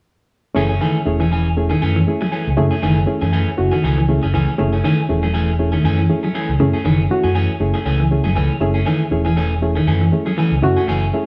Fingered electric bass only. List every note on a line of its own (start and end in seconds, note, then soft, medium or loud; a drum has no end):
0.56 0.78 F#1 medium
1.06 1.72 E1 medium
1.82 2.04 F#2 medium
2.48 2.57 C#2 medium
2.59 2.71 F#2 medium
2.72 muted fingered electric bass stroke soft
2.83 3.05 F#1 medium
3.22 3.44 F#2 medium
3.48 muted fingered electric bass stroke soft
3.59 3.71 F#1 medium
3.84 4.18 C#2 medium
4.24 4.33 F#1 medium
4.34 4.46 C#2 medium
4.49 muted fingered electric bass stroke soft
4.60 4.81 F#1 medium
5.10 5.76 E1 medium
5.84 6.06 F#2 medium
6.49 6.59 C#2 medium
6.60 6.72 F#2 medium
6.75 muted fingered electric bass stroke soft
6.85 7.07 F#1 medium
7.24 7.46 F#2 medium
7.60 7.73 F#1 medium
7.85 8.20 C#2 medium
8.24 8.34 F#1 medium
8.36 8.49 C#2 medium
8.50 muted fingered electric bass stroke soft
8.61 8.83 F#1 medium
9.11 9.78 E1 medium
9.87 10.09 F#2 medium
10.52 10.62 C#2 medium
10.63 10.75 F#2 medium
10.77 muted fingered electric bass stroke soft
10.88 11.10 F#1 medium